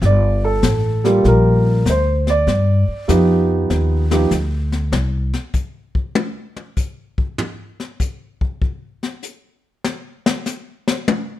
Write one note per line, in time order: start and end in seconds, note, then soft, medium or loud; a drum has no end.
0.02 0.61 G1 medium
0.02 0.43 D5 medium
0.02 brush sweep medium
0.02 kick soft
0.02 snare soft
0.44 1.21 A4 medium
0.63 1.22 A1 medium
0.63 kick soft
0.63 snare medium
0.63 hi-hat pedal medium
1.04 1.82 G3 medium
1.04 1.82 A#3 medium
1.04 1.82 F4 medium
1.04 1.82 G4 medium
1.04 snare soft
1.23 1.84 A#1 medium
1.23 1.28 A4 soft
1.23 brush sweep soft
1.23 kick soft
1.23 snare soft
1.28 1.84 A#4 medium
1.86 2.45 D2 medium
1.86 kick soft
1.86 snare medium
1.86 hi-hat pedal soft
1.90 2.28 C5 medium
2.27 3.06 D5 medium
2.27 snare soft
2.47 2.85 G2 medium
2.47 brush sweep soft
2.47 kick soft
2.47 snare soft
2.88 muted upright bass stroke soft
3.08 3.68 F2 medium
3.08 4.03 F3 medium
3.08 4.03 B3 medium
3.08 4.03 D#4 medium
3.08 4.03 G4 medium
3.08 kick soft
3.08 snare medium
3.08 hi-hat pedal medium
3.70 4.30 D#2 medium
3.70 brush sweep medium
3.70 kick soft
3.70 snare soft
4.11 4.29 F3 medium
4.11 4.29 B3 medium
4.11 4.30 D#4 medium
4.11 4.30 G4 medium
4.11 snare medium
4.31 4.91 D2 medium
4.31 kick soft
4.31 snare soft
4.31 hi-hat pedal soft
4.72 snare soft
4.92 5.32 C2 medium
4.92 snare medium
5.33 snare soft
5.54 kick medium
5.54 hi-hat pedal medium
5.95 kick medium
6.15 high tom loud
6.56 high tom soft
6.77 kick medium
6.77 hi-hat pedal soft
7.18 kick medium
7.38 floor tom medium
7.80 snare soft
8.00 kick medium
8.00 hi-hat pedal medium
8.41 kick medium
8.62 kick medium
9.03 snare soft
9.23 hi-hat pedal soft
9.84 snare medium
10.26 snare loud
10.46 snare soft
10.46 hi-hat pedal medium
10.88 snare medium
11.08 high tom loud